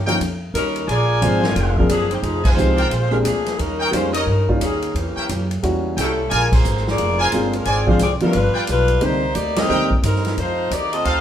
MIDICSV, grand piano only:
0, 0, Header, 1, 2, 480
1, 0, Start_track
1, 0, Tempo, 339175
1, 1244, Time_signature, 4, 2, 24, 8
1, 15860, End_track
2, 0, Start_track
2, 0, Title_t, "Grand piano"
2, 0, Program_c, 0, 0
2, 96, Note_on_c, 0, 58, 66
2, 100, Note_on_c, 0, 61, 64
2, 100, Note_on_c, 0, 63, 59
2, 103, Note_on_c, 0, 53, 62
2, 103, Note_on_c, 0, 65, 69
2, 262, Note_off_c, 0, 58, 0
2, 265, Note_off_c, 0, 61, 0
2, 265, Note_off_c, 0, 63, 0
2, 266, Note_off_c, 0, 53, 0
2, 266, Note_off_c, 0, 65, 0
2, 1733, Note_on_c, 0, 53, 65
2, 1739, Note_on_c, 0, 58, 60
2, 1742, Note_on_c, 0, 60, 57
2, 1746, Note_on_c, 0, 68, 74
2, 1749, Note_on_c, 0, 62, 54
2, 1996, Note_off_c, 0, 53, 0
2, 2000, Note_off_c, 0, 58, 0
2, 2001, Note_off_c, 0, 60, 0
2, 2003, Note_off_c, 0, 68, 0
2, 2005, Note_off_c, 0, 62, 0
2, 2528, Note_on_c, 0, 53, 71
2, 2532, Note_on_c, 0, 58, 62
2, 2537, Note_on_c, 0, 62, 68
2, 2539, Note_on_c, 0, 60, 62
2, 2540, Note_on_c, 0, 68, 73
2, 2679, Note_off_c, 0, 53, 0
2, 2681, Note_off_c, 0, 58, 0
2, 2683, Note_off_c, 0, 62, 0
2, 2684, Note_off_c, 0, 60, 0
2, 2685, Note_off_c, 0, 68, 0
2, 3646, Note_on_c, 0, 60, 56
2, 3653, Note_on_c, 0, 53, 60
2, 3657, Note_on_c, 0, 56, 53
2, 3658, Note_on_c, 0, 67, 67
2, 3662, Note_on_c, 0, 63, 54
2, 3914, Note_off_c, 0, 60, 0
2, 3917, Note_off_c, 0, 53, 0
2, 3919, Note_off_c, 0, 56, 0
2, 3920, Note_off_c, 0, 67, 0
2, 3921, Note_off_c, 0, 63, 0
2, 4402, Note_on_c, 0, 56, 59
2, 4403, Note_on_c, 0, 58, 60
2, 4404, Note_on_c, 0, 60, 51
2, 4414, Note_on_c, 0, 62, 54
2, 4422, Note_on_c, 0, 67, 70
2, 4577, Note_off_c, 0, 56, 0
2, 4577, Note_off_c, 0, 58, 0
2, 4577, Note_off_c, 0, 60, 0
2, 4582, Note_off_c, 0, 62, 0
2, 4587, Note_off_c, 0, 67, 0
2, 5529, Note_on_c, 0, 55, 56
2, 5536, Note_on_c, 0, 58, 52
2, 5542, Note_on_c, 0, 61, 52
2, 5546, Note_on_c, 0, 63, 56
2, 5546, Note_on_c, 0, 65, 65
2, 5816, Note_off_c, 0, 55, 0
2, 5819, Note_off_c, 0, 58, 0
2, 5822, Note_off_c, 0, 61, 0
2, 5824, Note_off_c, 0, 63, 0
2, 5824, Note_off_c, 0, 65, 0
2, 6347, Note_on_c, 0, 55, 70
2, 6349, Note_on_c, 0, 61, 54
2, 6350, Note_on_c, 0, 58, 58
2, 6352, Note_on_c, 0, 63, 64
2, 6354, Note_on_c, 0, 65, 72
2, 6509, Note_off_c, 0, 55, 0
2, 6510, Note_off_c, 0, 61, 0
2, 6511, Note_off_c, 0, 58, 0
2, 6512, Note_off_c, 0, 63, 0
2, 6513, Note_off_c, 0, 65, 0
2, 7965, Note_on_c, 0, 55, 56
2, 7966, Note_on_c, 0, 58, 52
2, 7971, Note_on_c, 0, 66, 62
2, 7975, Note_on_c, 0, 64, 53
2, 7977, Note_on_c, 0, 61, 51
2, 8685, Note_off_c, 0, 55, 0
2, 8685, Note_off_c, 0, 58, 0
2, 8688, Note_off_c, 0, 66, 0
2, 8690, Note_off_c, 0, 64, 0
2, 8691, Note_off_c, 0, 61, 0
2, 10374, Note_on_c, 0, 56, 57
2, 10380, Note_on_c, 0, 58, 63
2, 10382, Note_on_c, 0, 65, 61
2, 10384, Note_on_c, 0, 60, 59
2, 10386, Note_on_c, 0, 62, 57
2, 10639, Note_off_c, 0, 56, 0
2, 10642, Note_off_c, 0, 58, 0
2, 10643, Note_off_c, 0, 65, 0
2, 10644, Note_off_c, 0, 60, 0
2, 10645, Note_off_c, 0, 62, 0
2, 11134, Note_on_c, 0, 62, 70
2, 11135, Note_on_c, 0, 56, 71
2, 11136, Note_on_c, 0, 60, 67
2, 11138, Note_on_c, 0, 53, 76
2, 11141, Note_on_c, 0, 65, 77
2, 11304, Note_off_c, 0, 56, 0
2, 11304, Note_off_c, 0, 62, 0
2, 11305, Note_off_c, 0, 60, 0
2, 11306, Note_off_c, 0, 53, 0
2, 11308, Note_off_c, 0, 65, 0
2, 11622, Note_on_c, 0, 55, 64
2, 11623, Note_on_c, 0, 53, 62
2, 11623, Note_on_c, 0, 59, 61
2, 11630, Note_on_c, 0, 65, 80
2, 11632, Note_on_c, 0, 62, 57
2, 11788, Note_off_c, 0, 53, 0
2, 11788, Note_off_c, 0, 55, 0
2, 11788, Note_off_c, 0, 59, 0
2, 11792, Note_off_c, 0, 65, 0
2, 11793, Note_off_c, 0, 62, 0
2, 12745, Note_on_c, 0, 55, 56
2, 12752, Note_on_c, 0, 50, 65
2, 12752, Note_on_c, 0, 60, 60
2, 12752, Note_on_c, 0, 63, 66
2, 12754, Note_on_c, 0, 58, 63
2, 13025, Note_off_c, 0, 55, 0
2, 13028, Note_off_c, 0, 50, 0
2, 13028, Note_off_c, 0, 60, 0
2, 13028, Note_off_c, 0, 63, 0
2, 13029, Note_off_c, 0, 58, 0
2, 13712, Note_on_c, 0, 50, 51
2, 13713, Note_on_c, 0, 63, 58
2, 13716, Note_on_c, 0, 58, 49
2, 13717, Note_on_c, 0, 55, 50
2, 13726, Note_on_c, 0, 60, 46
2, 13988, Note_off_c, 0, 50, 0
2, 13988, Note_off_c, 0, 63, 0
2, 13990, Note_off_c, 0, 55, 0
2, 13990, Note_off_c, 0, 58, 0
2, 13995, Note_off_c, 0, 60, 0
2, 15860, End_track
0, 0, End_of_file